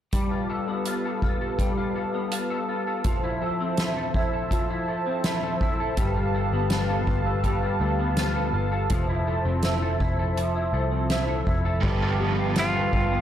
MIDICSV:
0, 0, Header, 1, 8, 480
1, 0, Start_track
1, 0, Tempo, 731707
1, 81, Time_signature, 4, 2, 24, 8
1, 8666, End_track
2, 0, Start_track
2, 0, Title_t, "Analog synth pad"
2, 0, Program_c, 0, 89
2, 83, Note_on_c, 0, 81, 69
2, 85, Note_on_c, 0, 67, 64
2, 85, Note_on_c, 0, 77, 64
2, 86, Note_on_c, 0, 71, 65
2, 1984, Note_off_c, 0, 67, 0
2, 1984, Note_off_c, 0, 77, 0
2, 1985, Note_off_c, 0, 71, 0
2, 1997, Note_on_c, 0, 72, 62
2, 1998, Note_on_c, 0, 53, 63
2, 1998, Note_on_c, 0, 76, 63
2, 3900, Note_off_c, 0, 53, 0
2, 3900, Note_off_c, 0, 72, 0
2, 3901, Note_off_c, 0, 76, 0
2, 3917, Note_on_c, 0, 71, 67
2, 3919, Note_on_c, 0, 77, 59
2, 3921, Note_on_c, 0, 67, 61
2, 5820, Note_off_c, 0, 71, 0
2, 5821, Note_off_c, 0, 77, 0
2, 5822, Note_off_c, 0, 67, 0
2, 5845, Note_on_c, 0, 53, 68
2, 5847, Note_on_c, 0, 72, 64
2, 5847, Note_on_c, 0, 76, 69
2, 7736, Note_off_c, 0, 81, 0
2, 7744, Note_off_c, 0, 53, 0
2, 7745, Note_off_c, 0, 72, 0
2, 7745, Note_off_c, 0, 76, 0
2, 7762, Note_on_c, 0, 81, 74
2, 7763, Note_on_c, 0, 53, 70
2, 7763, Note_on_c, 0, 71, 60
2, 7764, Note_on_c, 0, 79, 68
2, 8666, Note_off_c, 0, 53, 0
2, 8666, Note_off_c, 0, 71, 0
2, 8666, Note_off_c, 0, 79, 0
2, 8666, Note_off_c, 0, 81, 0
2, 8666, End_track
3, 0, Start_track
3, 0, Title_t, "Handpan"
3, 0, Program_c, 1, 114
3, 8004, Note_on_c, 1, 67, 64
3, 8666, Note_off_c, 1, 67, 0
3, 8666, End_track
4, 0, Start_track
4, 0, Title_t, "Clean electric guitar"
4, 0, Program_c, 2, 27
4, 85, Note_on_c, 2, 55, 68
4, 205, Note_on_c, 2, 65, 45
4, 325, Note_on_c, 2, 69, 60
4, 446, Note_on_c, 2, 59, 54
4, 567, Note_off_c, 2, 65, 0
4, 569, Note_on_c, 2, 65, 55
4, 687, Note_off_c, 2, 69, 0
4, 690, Note_on_c, 2, 69, 53
4, 804, Note_off_c, 2, 65, 0
4, 807, Note_on_c, 2, 65, 55
4, 923, Note_off_c, 2, 69, 0
4, 926, Note_on_c, 2, 69, 49
4, 1039, Note_off_c, 2, 55, 0
4, 1047, Note_on_c, 2, 55, 65
4, 1161, Note_off_c, 2, 65, 0
4, 1164, Note_on_c, 2, 65, 44
4, 1281, Note_off_c, 2, 69, 0
4, 1284, Note_on_c, 2, 69, 50
4, 1397, Note_off_c, 2, 59, 0
4, 1405, Note_on_c, 2, 59, 48
4, 1522, Note_off_c, 2, 65, 0
4, 1524, Note_on_c, 2, 65, 51
4, 1639, Note_off_c, 2, 69, 0
4, 1642, Note_on_c, 2, 69, 56
4, 1760, Note_off_c, 2, 65, 0
4, 1762, Note_on_c, 2, 65, 50
4, 1881, Note_off_c, 2, 69, 0
4, 1883, Note_on_c, 2, 69, 54
4, 2002, Note_off_c, 2, 55, 0
4, 2004, Note_on_c, 2, 53, 67
4, 2051, Note_off_c, 2, 59, 0
4, 2121, Note_off_c, 2, 65, 0
4, 2123, Note_on_c, 2, 64, 50
4, 2239, Note_off_c, 2, 69, 0
4, 2242, Note_on_c, 2, 69, 63
4, 2366, Note_on_c, 2, 60, 50
4, 2477, Note_off_c, 2, 64, 0
4, 2485, Note_on_c, 2, 64, 54
4, 2601, Note_off_c, 2, 69, 0
4, 2604, Note_on_c, 2, 69, 53
4, 2717, Note_off_c, 2, 64, 0
4, 2725, Note_on_c, 2, 64, 50
4, 2839, Note_off_c, 2, 69, 0
4, 2842, Note_on_c, 2, 69, 48
4, 2960, Note_off_c, 2, 53, 0
4, 2962, Note_on_c, 2, 53, 75
4, 3077, Note_off_c, 2, 64, 0
4, 3085, Note_on_c, 2, 64, 42
4, 3198, Note_off_c, 2, 69, 0
4, 3201, Note_on_c, 2, 69, 52
4, 3314, Note_off_c, 2, 60, 0
4, 3322, Note_on_c, 2, 60, 55
4, 3434, Note_off_c, 2, 64, 0
4, 3442, Note_on_c, 2, 64, 52
4, 3561, Note_off_c, 2, 69, 0
4, 3564, Note_on_c, 2, 69, 53
4, 3676, Note_off_c, 2, 64, 0
4, 3684, Note_on_c, 2, 64, 53
4, 3803, Note_off_c, 2, 69, 0
4, 3805, Note_on_c, 2, 69, 61
4, 3922, Note_off_c, 2, 53, 0
4, 3924, Note_on_c, 2, 55, 71
4, 3970, Note_off_c, 2, 60, 0
4, 3971, Note_off_c, 2, 64, 0
4, 4041, Note_on_c, 2, 65, 51
4, 4160, Note_off_c, 2, 69, 0
4, 4163, Note_on_c, 2, 69, 59
4, 4283, Note_on_c, 2, 59, 54
4, 4398, Note_off_c, 2, 65, 0
4, 4401, Note_on_c, 2, 65, 54
4, 4518, Note_off_c, 2, 69, 0
4, 4520, Note_on_c, 2, 69, 54
4, 4638, Note_off_c, 2, 65, 0
4, 4641, Note_on_c, 2, 65, 49
4, 4760, Note_off_c, 2, 69, 0
4, 4762, Note_on_c, 2, 69, 59
4, 4874, Note_off_c, 2, 55, 0
4, 4882, Note_on_c, 2, 55, 73
4, 4999, Note_off_c, 2, 65, 0
4, 5001, Note_on_c, 2, 65, 49
4, 5120, Note_off_c, 2, 69, 0
4, 5122, Note_on_c, 2, 69, 60
4, 5234, Note_off_c, 2, 59, 0
4, 5242, Note_on_c, 2, 59, 50
4, 5359, Note_off_c, 2, 65, 0
4, 5362, Note_on_c, 2, 65, 57
4, 5480, Note_off_c, 2, 69, 0
4, 5482, Note_on_c, 2, 69, 56
4, 5600, Note_off_c, 2, 65, 0
4, 5602, Note_on_c, 2, 65, 51
4, 5717, Note_off_c, 2, 69, 0
4, 5720, Note_on_c, 2, 69, 57
4, 5839, Note_off_c, 2, 55, 0
4, 5841, Note_on_c, 2, 53, 80
4, 5890, Note_off_c, 2, 59, 0
4, 5960, Note_off_c, 2, 65, 0
4, 5962, Note_on_c, 2, 64, 54
4, 6081, Note_off_c, 2, 69, 0
4, 6083, Note_on_c, 2, 69, 64
4, 6202, Note_on_c, 2, 60, 53
4, 6316, Note_off_c, 2, 64, 0
4, 6324, Note_on_c, 2, 64, 53
4, 6442, Note_off_c, 2, 69, 0
4, 6445, Note_on_c, 2, 69, 56
4, 6557, Note_off_c, 2, 64, 0
4, 6565, Note_on_c, 2, 64, 52
4, 6683, Note_off_c, 2, 69, 0
4, 6685, Note_on_c, 2, 69, 54
4, 6803, Note_off_c, 2, 53, 0
4, 6805, Note_on_c, 2, 53, 76
4, 6917, Note_off_c, 2, 64, 0
4, 6924, Note_on_c, 2, 64, 47
4, 7040, Note_off_c, 2, 69, 0
4, 7043, Note_on_c, 2, 69, 61
4, 7154, Note_off_c, 2, 60, 0
4, 7162, Note_on_c, 2, 60, 49
4, 7274, Note_off_c, 2, 64, 0
4, 7282, Note_on_c, 2, 64, 54
4, 7399, Note_off_c, 2, 69, 0
4, 7402, Note_on_c, 2, 69, 55
4, 7515, Note_off_c, 2, 64, 0
4, 7523, Note_on_c, 2, 64, 51
4, 7641, Note_off_c, 2, 69, 0
4, 7644, Note_on_c, 2, 69, 59
4, 7761, Note_off_c, 2, 53, 0
4, 7764, Note_on_c, 2, 55, 76
4, 7810, Note_off_c, 2, 60, 0
4, 7810, Note_off_c, 2, 64, 0
4, 7885, Note_on_c, 2, 65, 55
4, 8004, Note_on_c, 2, 59, 59
4, 8024, Note_off_c, 2, 69, 0
4, 8120, Note_off_c, 2, 65, 0
4, 8123, Note_on_c, 2, 65, 51
4, 8232, Note_off_c, 2, 59, 0
4, 8240, Note_on_c, 2, 59, 62
4, 8360, Note_on_c, 2, 69, 56
4, 8477, Note_off_c, 2, 65, 0
4, 8480, Note_on_c, 2, 65, 55
4, 8597, Note_off_c, 2, 59, 0
4, 8604, Note_on_c, 2, 59, 46
4, 8666, Note_off_c, 2, 55, 0
4, 8666, Note_off_c, 2, 59, 0
4, 8666, Note_off_c, 2, 65, 0
4, 8666, Note_off_c, 2, 69, 0
4, 8666, End_track
5, 0, Start_track
5, 0, Title_t, "Electric slide guitar"
5, 0, Program_c, 3, 29
5, 8261, Note_on_c, 3, 65, 72
5, 8666, Note_off_c, 3, 65, 0
5, 8666, End_track
6, 0, Start_track
6, 0, Title_t, "Overdriven electric guitar"
6, 0, Program_c, 4, 29
6, 7745, Note_on_c, 4, 43, 83
6, 7757, Note_on_c, 4, 50, 79
6, 7766, Note_on_c, 4, 53, 75
6, 7776, Note_on_c, 4, 55, 71
6, 7785, Note_on_c, 4, 59, 92
6, 7792, Note_on_c, 4, 69, 86
6, 8666, Note_off_c, 4, 43, 0
6, 8666, Note_off_c, 4, 50, 0
6, 8666, Note_off_c, 4, 53, 0
6, 8666, Note_off_c, 4, 55, 0
6, 8666, Note_off_c, 4, 59, 0
6, 8666, Note_off_c, 4, 69, 0
6, 8666, End_track
7, 0, Start_track
7, 0, Title_t, "Picked electric bass"
7, 0, Program_c, 5, 34
7, 3918, Note_on_c, 5, 31, 93
7, 4261, Note_off_c, 5, 31, 0
7, 4278, Note_on_c, 5, 31, 77
7, 4622, Note_off_c, 5, 31, 0
7, 4640, Note_on_c, 5, 31, 68
7, 5097, Note_off_c, 5, 31, 0
7, 5118, Note_on_c, 5, 38, 82
7, 5576, Note_off_c, 5, 38, 0
7, 5596, Note_on_c, 5, 31, 70
7, 5826, Note_off_c, 5, 31, 0
7, 5841, Note_on_c, 5, 29, 93
7, 6183, Note_off_c, 5, 29, 0
7, 6201, Note_on_c, 5, 29, 81
7, 6543, Note_off_c, 5, 29, 0
7, 6561, Note_on_c, 5, 29, 75
7, 7017, Note_off_c, 5, 29, 0
7, 7037, Note_on_c, 5, 36, 87
7, 7495, Note_off_c, 5, 36, 0
7, 7524, Note_on_c, 5, 29, 71
7, 7751, Note_off_c, 5, 29, 0
7, 7762, Note_on_c, 5, 31, 88
7, 8455, Note_off_c, 5, 31, 0
7, 8482, Note_on_c, 5, 31, 73
7, 8666, Note_off_c, 5, 31, 0
7, 8666, End_track
8, 0, Start_track
8, 0, Title_t, "Drums"
8, 84, Note_on_c, 9, 42, 65
8, 85, Note_on_c, 9, 36, 88
8, 149, Note_off_c, 9, 42, 0
8, 150, Note_off_c, 9, 36, 0
8, 561, Note_on_c, 9, 42, 59
8, 627, Note_off_c, 9, 42, 0
8, 802, Note_on_c, 9, 36, 63
8, 868, Note_off_c, 9, 36, 0
8, 1041, Note_on_c, 9, 36, 66
8, 1045, Note_on_c, 9, 42, 50
8, 1107, Note_off_c, 9, 36, 0
8, 1110, Note_off_c, 9, 42, 0
8, 1520, Note_on_c, 9, 42, 73
8, 1586, Note_off_c, 9, 42, 0
8, 1997, Note_on_c, 9, 42, 55
8, 1999, Note_on_c, 9, 36, 88
8, 2062, Note_off_c, 9, 42, 0
8, 2065, Note_off_c, 9, 36, 0
8, 2476, Note_on_c, 9, 42, 58
8, 2479, Note_on_c, 9, 38, 97
8, 2542, Note_off_c, 9, 42, 0
8, 2545, Note_off_c, 9, 38, 0
8, 2719, Note_on_c, 9, 36, 71
8, 2784, Note_off_c, 9, 36, 0
8, 2958, Note_on_c, 9, 36, 63
8, 2963, Note_on_c, 9, 42, 51
8, 3024, Note_off_c, 9, 36, 0
8, 3029, Note_off_c, 9, 42, 0
8, 3437, Note_on_c, 9, 42, 67
8, 3438, Note_on_c, 9, 38, 91
8, 3503, Note_off_c, 9, 42, 0
8, 3504, Note_off_c, 9, 38, 0
8, 3680, Note_on_c, 9, 36, 78
8, 3745, Note_off_c, 9, 36, 0
8, 3918, Note_on_c, 9, 42, 60
8, 3919, Note_on_c, 9, 36, 91
8, 3983, Note_off_c, 9, 42, 0
8, 3985, Note_off_c, 9, 36, 0
8, 4395, Note_on_c, 9, 42, 59
8, 4399, Note_on_c, 9, 38, 102
8, 4461, Note_off_c, 9, 42, 0
8, 4464, Note_off_c, 9, 38, 0
8, 4640, Note_on_c, 9, 36, 72
8, 4706, Note_off_c, 9, 36, 0
8, 4879, Note_on_c, 9, 36, 57
8, 4881, Note_on_c, 9, 42, 51
8, 4945, Note_off_c, 9, 36, 0
8, 4947, Note_off_c, 9, 42, 0
8, 5358, Note_on_c, 9, 42, 69
8, 5359, Note_on_c, 9, 38, 86
8, 5424, Note_off_c, 9, 42, 0
8, 5425, Note_off_c, 9, 38, 0
8, 5837, Note_on_c, 9, 42, 64
8, 5842, Note_on_c, 9, 36, 100
8, 5903, Note_off_c, 9, 42, 0
8, 5907, Note_off_c, 9, 36, 0
8, 6315, Note_on_c, 9, 42, 64
8, 6318, Note_on_c, 9, 38, 89
8, 6381, Note_off_c, 9, 42, 0
8, 6384, Note_off_c, 9, 38, 0
8, 6562, Note_on_c, 9, 36, 73
8, 6628, Note_off_c, 9, 36, 0
8, 6806, Note_on_c, 9, 42, 53
8, 6871, Note_off_c, 9, 42, 0
8, 7281, Note_on_c, 9, 42, 74
8, 7282, Note_on_c, 9, 38, 89
8, 7347, Note_off_c, 9, 42, 0
8, 7348, Note_off_c, 9, 38, 0
8, 7523, Note_on_c, 9, 36, 72
8, 7589, Note_off_c, 9, 36, 0
8, 7761, Note_on_c, 9, 49, 80
8, 7762, Note_on_c, 9, 36, 106
8, 7826, Note_off_c, 9, 49, 0
8, 7828, Note_off_c, 9, 36, 0
8, 8238, Note_on_c, 9, 42, 66
8, 8241, Note_on_c, 9, 38, 101
8, 8304, Note_off_c, 9, 42, 0
8, 8307, Note_off_c, 9, 38, 0
8, 8483, Note_on_c, 9, 36, 75
8, 8548, Note_off_c, 9, 36, 0
8, 8666, End_track
0, 0, End_of_file